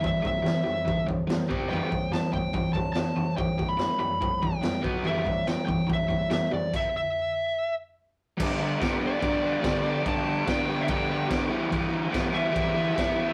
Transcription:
<<
  \new Staff \with { instrumentName = "Lead electric guitar" } { \time 4/4 \key e \minor \tempo 4 = 144 e''8 e''2 r4. | g''4 a''8 g''4 a''8 a''4 | g''8. b''8. b''4 g''4 r8 | e''4 g''8 g''8 e''4 e''8 d''8 |
e''8 e''2 r4. | r4. d''2~ d''8 | a''4 \tuplet 3/2 { g''4~ g''16 e''16 } g''4 r4 | r4. e''2~ e''8 | }
  \new Staff \with { instrumentName = "Overdriven electric guitar" } { \clef bass \time 4/4 \key e \minor <e g>8 <e g>8 <e g>8 <e g>8 <e g>8 <e g>8 <e g>8 <c g c'>8 | <e g b>8 <e g>8 <e g>8 <e g>8 <e g>8 <e g>8 <e g>8 <e g>8 | <e g>8 <e g>8 <e g>8 <e g>8 <e g>8 <e g>8 <e g>8 <b, fis b>8 | <e g b>8 <e g>8 <e g>8 <e g>8 <e g>8 <e g>8 <e g>8 <e g>8 |
r1 | <g, d g b d'>8 <g b d'>8 <d g b d'>8 <g b d'>8 <g, d g b d'>8 <g b d'>8 <g, d g b d'>8 <g b d'>8 | <g, d g b d'>8 <g b d'>8 <d g b d'>8 <g b d'>8 <g, d g b d'>8 <g b d'>8 <g, d g b d'>8 <e g b e'>8 | <e g b e'>8 <g b e'>8 <e g b e'>8 <g b e'>8 <e g b e'>8 <g b e'>8 <e g b e'>8 <g b e'>8 | }
  \new DrumStaff \with { instrumentName = "Drums" } \drummode { \time 4/4 <bd tomfh>8 <bd tomfh>8 <sn tomfh>8 tomfh8 <bd tomfh>8 <bd tomfh>8 <sn tomfh>8 <bd tomfh>8 | tomfh8 <bd tomfh>8 <sn tomfh>8 <bd tomfh>8 <bd tomfh>8 <bd tomfh>8 <sn tomfh>8 tomfh8 | <bd tomfh>8 <bd tomfh>8 <sn tomfh>8 tomfh8 <bd tomfh>8 <bd tomfh>8 <sn tomfh>8 <bd tomfh>8 | tomfh8 <bd tomfh>8 <sn tomfh>8 <bd tomfh>8 <bd tomfh>8 <bd tomfh>8 <sn tomfh>8 tomfh8 |
<cymc bd>4 r4 r4 r4 | <cymc bd>4 <cymc bd sn>4 <cymc bd>4 <cymc bd sn>4 | <cymc bd>4 <cymc bd sn>4 <cymc bd>4 <cymc bd sn>4 | <cymc bd>4 <cymc bd sn>4 <cymc bd>4 <cymc bd sn>4 | }
>>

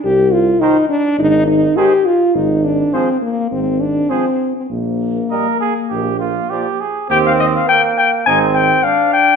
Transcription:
<<
  \new Staff \with { instrumentName = "Trumpet" } { \time 4/4 \key ees \major \tempo 4 = 103 r4 c''4 r4 c''4 | r4 c''4 r4 c''4 | r4 ees''4 r4 d''4 | g''16 f''16 ees''16 f''16 g''8 g''8 aes''8 g''8 f''8 g''8 | }
  \new Staff \with { instrumentName = "Trumpet" } { \time 4/4 \key ees \major r4 bes'4 r4 aes'4 | r4 aes'4 r4 aes'4 | r4 bes'8 aes'8 g'8 f'8 g'8 aes'8 | g'8 r4. ees'8 r4. | }
  \new Staff \with { instrumentName = "French horn" } { \time 4/4 \key ees \major g'8 f'8 ees'8 d'8 ees'8 ees'8 g'8 f'8 | ees'8 d'8 c'8 bes8 c'8 d'8 c'8. c'16 | bes2.~ bes8 r8 | bes8 r4. c'8 r4. | }
  \new Staff \with { instrumentName = "Trombone" } { \clef bass \time 4/4 \key ees \major r4 ees4 r4 ees4 | r4 f4 r4 f4 | r4 g4 r4 f4 | c'4 bes4 c'4 d'4 | }
  \new Staff \with { instrumentName = "Tuba" } { \clef bass \time 4/4 \key ees \major c,4 r4 aes,,4 r4 | aes,,4 r4 aes,,4 r4 | bes,,4 r4 bes,,4 r4 | ees,4 r4 aes,,4 r4 | }
>>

